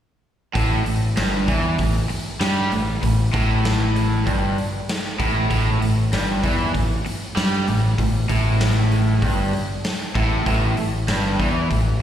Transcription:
0.55 fingered electric bass A1, overdriven electric guitar A2, kick, open hi-hat
0.85 fingered electric bass A1, overdriven electric guitar A2, open hi-hat
1.17 fingered electric bass G1, overdriven electric guitar G2, snare, open hi-hat
1.47 fingered electric bass E2, overdriven electric guitar E3, kick, open hi-hat
1.78 fingered electric bass A1, overdriven electric guitar A2, kick, open hi-hat
2.10 muted overdriven electric guitar stroke, muted fingered electric bass stroke, open hi-hat
2.40 fingered electric bass G2, overdriven electric guitar G3, snare, open hi-hat
2.71 fingered electric bass A1, overdriven electric guitar A2, open hi-hat
3.03 fingered electric bass A1, overdriven electric guitar A2, kick, open hi-hat
3.33 fingered electric bass A1, overdriven electric guitar A2, kick, open hi-hat
3.65 snare, open hi-hat
3.96 open hi-hat
4.26 fingered electric bass G1, overdriven electric guitar G2, kick, open hi-hat
4.58 open hi-hat
4.89 snare, open hi-hat
5.05 snare
5.19 fingered electric bass A1, overdriven electric guitar A2, kick, open hi-hat
5.50 fingered electric bass A1, overdriven electric guitar A2, kick, open hi-hat
5.82 fingered electric bass A1, overdriven electric guitar A2, open hi-hat
6.13 fingered electric bass G1, overdriven electric guitar G2, snare, open hi-hat
6.43 fingered electric bass E2, overdriven electric guitar E3, kick, open hi-hat
6.74 fingered electric bass A1, overdriven electric guitar A2, kick, open hi-hat
7.06 muted fingered electric bass stroke, muted overdriven electric guitar stroke, open hi-hat
7.36 fingered electric bass G2, overdriven electric guitar G3, snare, open hi-hat
7.53 snare
7.67 fingered electric bass A1, overdriven electric guitar A2, open hi-hat
7.98 fingered electric bass A1, overdriven electric guitar A2, kick, open hi-hat
8.29 fingered electric bass A1, overdriven electric guitar A2, kick, open hi-hat
8.61 snare, open hi-hat
8.92 open hi-hat
9.22 fingered electric bass G1, overdriven electric guitar G2, kick, open hi-hat
9.53 open hi-hat
9.84 snare, open hi-hat
10.15 fingered electric bass A1, overdriven electric guitar A2, kick, open hi-hat
10.46 fingered electric bass A1, overdriven electric guitar A2, kick, open hi-hat
10.77 fingered electric bass A1, overdriven electric guitar A2, open hi-hat
11.08 fingered electric bass G1, overdriven electric guitar G2, snare, open hi-hat
11.39 fingered electric bass E2, overdriven electric guitar E3, kick, open hi-hat
11.70 fingered electric bass A1, overdriven electric guitar A2, kick, open hi-hat

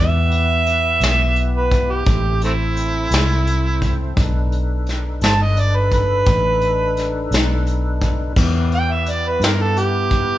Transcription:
Already playing: fingered electric bass E2, tonewheel organ B3 E4 G4 B4
0.00 harmonica E5
0.32 closed hi-hat
0.66 closed hi-hat
1.00 fingered electric bass B1, snare, closed hi-hat
1.36 closed hi-hat
1.57 harmonica B4
1.71 kick, closed hi-hat
1.91 harmonica G4
2.06 fingered electric bass A1, tonewheel organ C4 E4 A4 C5, kick, closed hi-hat
2.41 harmonica A3 C4 E4, closed hi-hat
2.77 closed hi-hat
3.11 fingered electric bass C2, snare, closed hi-hat
3.47 closed hi-hat
3.82 kick, closed hi-hat
4.16 fingered electric bass B1, tonewheel organ D4 D#4 A4 B4, kick, closed hi-hat
4.52 closed hi-hat
4.87 snare, closed hi-hat
5.21 fingered electric bass G1, harmonica C5 E5 A5, snare, closed hi-hat
5.42 harmonica D#5
5.56 harmonica D5, closed hi-hat
5.77 harmonica B4
5.92 harmonica B4, kick, closed hi-hat
6.26 fingered electric bass A1, kick, closed hi-hat
6.61 closed hi-hat
6.97 snare, closed hi-hat
7.31 fingered electric bass B1, snare, closed hi-hat
7.67 closed hi-hat
8.02 kick, closed hi-hat
8.36 fingered electric bass E2, tonewheel organ B3 E4 G4 B4, kick, crash
8.72 harmonica G5, closed hi-hat
8.92 harmonica E5
9.06 closed hi-hat
9.10 harmonica D5
9.28 harmonica B4
9.40 fingered electric bass G2, snare, closed hi-hat
9.44 harmonica A#4
9.62 harmonica A4
9.77 harmonica G4, closed hi-hat
10.11 kick, closed hi-hat

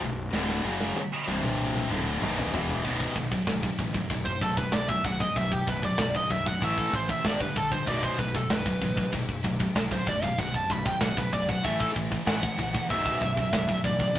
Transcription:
0.01 fingered electric bass B0, distorted electric guitar B1 F#2
0.33 fingered electric bass D1, distorted electric guitar D2 A2 D3, snare
0.49 snare
0.64 fingered electric bass F#1, distorted electric guitar F#2 C#3 F#3
0.81 snare
0.96 muted distorted electric guitar stroke, muted fingered electric bass stroke, high tom
1.28 fingered electric bass C1, distorted electric guitar C2 G2 C3, high tom
1.43 mid tom
1.74 mid tom
1.90 fingered electric bass D1, distorted electric guitar D2 A2 D3, mid tom
2.22 fingered electric bass B0, distorted electric guitar B1 F#2 B2, mid tom
2.37 floor tom
2.53 fingered electric bass E1, distorted electric guitar E2 B2 E3, floor tom
2.69 floor tom
2.84 fingered electric bass B0, distorted electric guitar B1 F#2 B2, kick, crash
3.00 kick
3.16 fingered electric bass B0, distorted electric guitar B1 F#2, kick, crash
3.32 distorted electric guitar B1 F#2, kick
3.47 fingered electric bass B0, distorted electric guitar B1 F#2, kick, snare, crash
3.63 distorted electric guitar B1 F#2, kick
3.79 fingered electric bass A1, distorted electric guitar B1 F#2, kick, crash
3.94 distorted electric guitar B1 F#2, kick
4.10 fingered electric bass F#1, distorted electric guitar B1 F#2, kick, crash
4.25 lead electric guitar C5, kick
4.41 fingered electric bass B0, distorted electric guitar B1 F#2, lead electric guitar A4, kick, crash
4.57 distorted electric guitar B1 F#2, lead electric guitar B4, kick
4.72 fingered electric bass B0, distorted electric guitar B1 F#2, lead electric guitar D5, kick, snare, crash
4.89 distorted electric guitar B1 F#2, lead electric guitar E5, kick
5.04 fingered electric bass B0, distorted electric guitar B1 F#2, lead electric guitar F#5, kick, crash
5.20 distorted electric guitar B1 F#2, lead electric guitar D#5, kick
5.36 fingered electric bass B0, distorted electric guitar B1 F#2, lead electric guitar E5, kick, crash
5.52 lead electric guitar G4, kick
5.67 fingered electric bass B0, distorted electric guitar B1 F#2, lead electric guitar B4, kick, crash
5.82 distorted electric guitar B1 F#2, lead electric guitar D5, kick
5.98 fingered electric bass B0, distorted electric guitar B1 F#2, lead electric guitar D5, kick, snare, crash
6.14 distorted electric guitar B1 F#2, lead electric guitar D#5, kick
6.30 fingered electric bass B0, distorted electric guitar B1 F#2, lead electric guitar E5, kick, crash
6.46 distorted electric guitar B1 F#2, lead electric guitar F#5, kick
6.61 fingered electric bass A1, distorted electric guitar A2 E3 A3, lead electric guitar E5, kick, crash
6.78 lead electric guitar A4, kick
6.93 fingered electric bass A1, distorted electric guitar A2 E3, lead electric guitar C5, kick, crash
7.09 distorted electric guitar A2 E3, lead electric guitar E5, kick
7.24 fingered electric bass G1, distorted electric guitar G2 D3 G3, lead electric guitar D5, kick, snare, crash
7.40 distorted electric guitar G2 D3, lead electric guitar B4, kick
7.56 fingered electric bass A#1, distorted electric guitar G2 D3, lead electric guitar A4, kick, crash
7.72 distorted electric guitar G2 D3, lead electric guitar C5, kick
7.86 fingered electric bass B0, distorted electric guitar B1 F#2 B2, lead electric guitar D5, kick, crash
8.03 lead electric guitar C5, kick
8.18 fingered electric bass B0, distorted electric guitar B1 F#2, lead electric guitar B4, kick, crash
8.34 distorted electric guitar B1 F#2, lead electric guitar A4, kick
8.50 fingered electric bass B0, distorted electric guitar B1 F#2, lead electric guitar B4, kick, snare, crash
8.66 distorted electric guitar B1 F#2, kick
8.81 fingered electric bass A1, distorted electric guitar B1 F#2, kick, crash
8.97 distorted electric guitar B1 F#2, kick
9.12 fingered electric bass F#1, distorted electric guitar B1 F#2, kick, crash
9.29 kick
9.44 fingered electric bass B0, distorted electric guitar B1 F#2, kick, crash
9.60 distorted electric guitar B1 F#2, kick
9.75 fingered electric bass B0, distorted electric guitar B1 F#2, kick, snare, crash
9.91 distorted electric guitar B1 F#2, lead electric guitar C5, kick
10.06 fingered electric bass B0, distorted electric guitar B1 F#2, lead electric guitar D5, kick, crash
10.23 distorted electric guitar B1 F#2, lead electric guitar F5, kick
10.38 fingered electric bass B0, distorted electric guitar B1 F#2, lead electric guitar F#5, kick, crash
10.54 lead electric guitar A5, kick
10.70 fingered electric bass B0, distorted electric guitar B1 F#2, lead electric guitar B5, kick, crash
10.86 distorted electric guitar B1 F#2, lead electric guitar G5, kick
11.01 fingered electric bass B0, distorted electric guitar B1 F#2, lead electric guitar F#5, kick, snare, crash
11.17 distorted electric guitar B1 F#2, lead electric guitar B4, kick
11.33 fingered electric bass B0, distorted electric guitar B1 F#2, lead electric guitar D5, kick, crash
11.49 distorted electric guitar B1 F#2, lead electric guitar F#5, kick
11.64 fingered electric bass A1, distorted electric guitar A2 E3 A3, lead electric guitar E5, kick, crash
11.80 lead electric guitar A4, kick
11.96 fingered electric bass A1, distorted electric guitar A2 E3, kick, crash
12.11 distorted electric guitar A2 E3, kick
12.26 fingered electric bass A1, distorted electric guitar A2 E3 A3, lead electric guitar F#5, kick, snare, crash
12.42 distorted electric guitar A2 E3, kick
12.58 fingered electric bass A#1, distorted electric guitar A2 E3, kick, crash
12.73 distorted electric guitar A2 E3, kick
12.89 fingered electric bass B0, distorted electric guitar B1 F#2 B2, lead electric guitar E5, kick, crash
13.06 kick
13.21 fingered electric bass B0, distorted electric guitar B1 F#2, kick, crash
13.37 distorted electric guitar B1 F#2, kick
13.53 fingered electric bass B0, distorted electric guitar B1 F#2, kick, snare, crash
13.68 distorted electric guitar B1 F#2, kick
13.84 fingered electric bass A1, distorted electric guitar B1 F#2, lead electric guitar D5, kick, crash
13.99 distorted electric guitar B1 F#2, kick
14.15 fingered electric bass F#1, distorted electric guitar B1, kick, crash

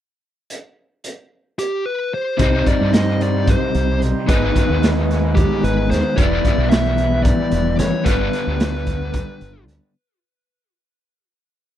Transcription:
0.50 closed hi-hat
1.04 closed hi-hat
1.58 lead electric guitar G4, closed hi-hat
1.86 lead electric guitar B4
2.14 lead electric guitar C5
2.37 fingered electric bass C2, overdriven electric guitar C3 G3 C4 D#4, harmonium G3 C4 D#4 G4 C5, kick, closed hi-hat
2.66 lead electric guitar D5, kick, closed hi-hat
2.81 fingered electric bass G2
2.93 lead electric guitar D#5, snare, closed hi-hat
3.21 lead electric guitar D5, closed hi-hat
3.47 lead electric guitar C5, kick, closed hi-hat
3.74 fingered electric bass C2, closed hi-hat
4.02 fingered electric bass B1, closed hi-hat
4.27 fingered electric bass G#1, overdriven electric guitar G#2 D#3 G#3 B3 D#4, harmonium G#3 B3 G#4 B4, lead electric guitar B4, kick, closed hi-hat
4.56 kick, closed hi-hat
4.70 fingered electric bass D#2
4.83 snare, closed hi-hat
5.11 snare, closed hi-hat
5.35 lead electric guitar G4, kick, closed hi-hat
5.64 fingered electric bass G#1, lead electric guitar B4, closed hi-hat
5.90 fingered electric bass D#2, lead electric guitar C5, snare, closed hi-hat
6.16 fingered electric bass E1, overdriven electric guitar E3 G3 B3 E4, harmonium G3 E4 G4, lead electric guitar D5, kick, closed hi-hat
6.45 kick, closed hi-hat
6.58 fingered electric bass B1
6.70 lead electric guitar E5, snare, closed hi-hat
6.98 closed hi-hat
7.23 lead electric guitar D5, kick, closed hi-hat
7.51 fingered electric bass E1, closed hi-hat
7.79 fingered electric bass F#1, lead electric guitar C#5, snare, closed hi-hat
8.04 fingered electric bass G1, overdriven electric guitar G2 D3 G3 B3 D4, harmonium D4, lead electric guitar B4, kick, closed hi-hat
8.33 closed hi-hat
8.47 fingered electric bass D2
8.60 snare, closed hi-hat
8.87 kick, closed hi-hat
9.13 kick, closed hi-hat
9.41 fingered electric bass G1, closed hi-hat
9.68 fingered electric bass D2, closed hi-hat

